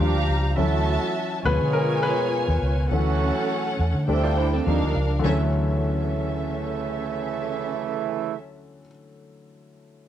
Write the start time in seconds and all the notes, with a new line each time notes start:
Already playing: C5
0.00 D#2 F3 G3 A#3 D4 G4 F5 A#5
0.15 D2
0.29 C#2
0.57 D2 E3 F#3 A3 C#4 E4 F#4 A4 E5 A5
1.44 D2 B2 F3 G#3 B3 C#4 F4 G#4 B4 C#5 G#5
1.61 D3
1.73 A#4
2.03 B4
2.48 D#2
2.62 C#2
2.89 D2 E3 F#3 A3 C#4 F#4 A4 F#5
3.79 E2
3.94 D3
4.08 D2 E3 G3 A3 C4 D4 E4 C5 G5
4.23 F4 D5
4.37 E4 C5
4.53 C4 A4
4.65 D#2 D#3 F3 G3 A#3 D4 D#4 A#4 F5
4.82 D2
4.95 C#2
5.19 D3 E3
5.24 D2 C#3 E3 F#3 A3 C#4 E4 A4 E5
5.29 C#4